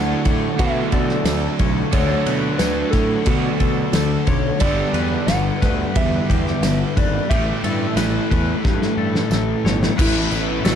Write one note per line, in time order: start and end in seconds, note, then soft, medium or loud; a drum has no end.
0.00 0.13 D2 medium
0.00 0.56 D3 medium
0.00 0.57 D3 medium
0.00 9.93 D3 medium
0.00 0.58 F#3 medium
0.00 4.57 F#3 medium
0.00 0.27 A3 medium
0.00 0.59 A3 medium
0.00 0.23 D4 medium
0.00 0.59 D4 medium
0.00 1.90 E4 medium
0.00 0.60 F#4 medium
0.00 4.57 A4 medium
0.00 0.26 C#5 medium
0.00 0.59 F#5 medium
0.23 0.48 A2 medium
0.23 0.59 A3 medium
0.23 0.61 D4 medium
0.23 0.92 C#5 medium
0.23 kick medium
0.23 ride medium
0.57 0.81 B2 loud
0.57 1.90 D3 medium
0.57 1.25 D3 medium
0.57 1.92 F#3 medium
0.57 1.91 A3 medium
0.57 1.27 A3 medium
0.57 1.94 D4 medium
0.57 0.96 E5 loud
0.57 kick loud
0.57 ride medium
0.61 1.29 D4 medium
0.61 1.95 F#4 medium
0.92 1.14 B2 medium
0.92 1.59 A4 medium
0.92 1.60 D5 medium
0.92 kick medium
0.92 ride medium
1.09 snare soft
1.24 1.47 D2 medium
1.24 1.91 D3 medium
1.24 1.92 A3 medium
1.24 snare loud
1.24 ride loud
1.24 tambourine medium
1.30 1.94 D4 medium
1.59 1.81 B1 medium
1.59 1.93 C#5 medium
1.59 kick medium
1.59 ride medium
1.91 2.15 D2 loud
1.91 3.24 D3 medium
1.91 2.57 D3 loud
1.91 3.27 F#3 medium
1.91 2.59 A3 medium
1.91 3.26 A3 medium
1.91 2.61 D4 loud
1.91 3.28 D4 medium
1.91 2.26 A4 medium
1.91 2.60 C#5 loud
1.91 7.26 F#5 medium
1.91 kick loud
1.91 ride loud
1.95 3.30 F#4 medium
2.26 2.48 B2 medium
2.26 2.60 B4 medium
2.26 ride medium
2.58 2.82 D2 medium
2.58 3.25 D3 medium
2.58 2.95 A3 medium
2.58 2.93 D4 medium
2.58 2.92 B4 medium
2.58 2.92 C#5 medium
2.58 snare loud
2.58 ride loud
2.58 tambourine medium
2.91 3.15 A2 medium
2.91 3.29 D4 medium
2.91 3.93 A4 loud
2.91 3.60 C#5 medium
2.91 kick medium
2.91 snare soft
2.91 ride medium
2.96 3.27 A3 medium
3.26 3.49 B2 medium
3.26 4.59 D3 medium
3.26 3.93 D3 medium
3.26 4.59 F#3 medium
3.26 4.60 A3 medium
3.26 3.94 A3 medium
3.26 4.62 D4 medium
3.26 kick loud
3.26 ride medium
3.30 3.97 D4 medium
3.30 4.61 F#4 medium
3.60 3.83 B2 medium
3.60 4.26 A4 medium
3.60 kick medium
3.60 ride medium
3.93 4.15 D2 medium
3.93 4.59 D3 medium
3.93 4.60 A3 medium
3.93 4.30 A4 medium
3.93 snare loud
3.93 ride medium
3.93 tambourine medium
3.97 7.32 D4 medium
4.27 4.50 B1 medium
4.27 4.60 C#5 medium
4.27 4.62 C#5 loud
4.27 kick medium
4.27 ride medium
4.59 4.83 G1 medium
4.59 5.92 G2 medium
4.59 5.26 G2 medium
4.59 5.93 D3 medium
4.59 5.28 D3 medium
4.59 9.94 G3 medium
4.59 5.95 G3 medium
4.59 7.27 B3 medium
4.59 5.94 B3 loud
4.59 5.97 D4 loud
4.59 5.97 G4 loud
4.59 4.94 A4 medium
4.59 7.27 B4 medium
4.59 5.28 D5 loud
4.59 kick loud
4.59 ride loud
4.65 5.31 G3 loud
4.93 5.16 E2 medium
4.93 5.28 B4 medium
4.93 ride medium
5.27 5.49 G1 medium
5.27 5.93 G2 medium
5.27 5.64 D3 medium
5.27 5.61 C#5 medium
5.27 5.98 F#5 loud
5.27 snare loud
5.27 ride medium
5.27 tambourine medium
5.31 5.61 G3 medium
5.62 5.84 D2 medium
5.62 5.95 D3 medium
5.62 5.97 G3 medium
5.62 6.29 B4 medium
5.62 kick medium
5.62 snare soft
5.62 ride medium
5.94 6.18 E2 loud
5.94 7.27 G2 medium
5.94 6.61 G2 medium
5.94 7.28 D3 medium
5.94 6.63 D3 loud
5.94 7.28 G3 medium
5.94 6.64 G3 medium
5.94 7.28 B3 medium
5.94 7.29 D4 medium
5.94 7.29 G4 medium
5.94 7.00 E5 loud
5.94 kick loud
5.94 ride medium
6.29 6.51 E2 medium
6.29 6.96 G4 medium
6.29 kick medium
6.29 ride medium
6.47 snare soft
6.61 6.83 G1 medium
6.61 7.28 G2 medium
6.61 7.29 D3 medium
6.61 snare loud
6.61 ride loud
6.61 tambourine medium
6.66 7.29 G3 medium
6.97 7.18 G#1 medium
6.97 7.30 B4 medium
6.97 7.31 D5 loud
6.97 kick medium
6.97 ride medium
7.29 7.52 A1 medium
7.29 8.61 A2 medium
7.29 7.96 A2 medium
7.29 8.62 E3 medium
7.29 7.98 E3 loud
7.29 8.62 G3 medium
7.29 9.95 A3 medium
7.29 7.99 A3 loud
7.29 8.63 C#4 medium
7.29 9.95 E4 medium
7.29 7.63 G4 medium
7.29 9.95 A4 medium
7.29 7.97 E5 medium
7.29 kick loud
7.29 ride medium
7.33 8.63 G4 medium
7.64 7.85 G2 medium
7.64 7.96 A4 medium
7.64 ride medium
7.96 8.18 A1 medium
7.96 8.62 A2 medium
7.96 8.31 E3 medium
7.96 8.29 B4 medium
7.96 snare loud
7.96 ride loud
7.96 tambourine medium
8.01 8.29 A3 medium
8.30 8.53 E2 medium
8.30 8.64 E3 medium
8.30 8.65 A3 medium
8.30 8.97 B4 medium
8.30 kick medium
8.30 ride medium
8.63 8.86 G2 medium
8.63 9.29 A2 medium
8.63 9.96 A2 medium
8.63 9.96 E3 medium
8.63 9.31 E3 medium
8.63 9.97 G3 medium
8.63 9.33 A3 medium
8.63 9.97 C#4 medium
8.63 9.98 G4 medium
8.63 kick loud
8.63 snare medium
8.82 snare medium
8.97 9.19 G2 medium
8.97 9.64 A4 medium
9.15 snare medium
9.30 9.53 A1 medium
9.30 9.96 A2 medium
9.30 9.97 E3 medium
9.30 snare medium
9.30 tambourine medium
9.34 9.98 A3 medium
9.64 9.86 G1 medium
9.64 9.98 C#5 medium
9.64 snare loud
9.83 snare loud
9.97 10.26 A1 medium
9.97 10.63 A2 medium
9.97 10.75 A2 medium
9.97 10.75 E3 medium
9.97 10.34 E3 loud
9.97 10.75 A3 medium
9.97 10.30 A3 loud
9.97 10.75 B3 medium
9.97 10.75 E4 medium
9.97 10.67 E4 loud
9.97 10.75 A4 medium
9.97 10.75 B4 medium
9.97 10.64 B4 medium
9.97 10.75 E5 medium
9.97 10.75 B5 loud
9.97 kick loud
9.97 crash loud
9.97 tambourine soft
9.97 crash medium
10.14 tambourine soft
10.30 10.59 A1 medium
10.30 10.65 E3 medium
10.30 10.67 A3 medium
10.30 tambourine medium
10.64 10.75 A1 medium
10.64 10.75 A2 medium
10.64 10.75 E3 medium
10.64 10.75 A3 medium
10.64 10.75 F#4 loud
10.64 10.75 A4 medium
10.64 snare loud
10.64 tambourine medium
10.64 crash medium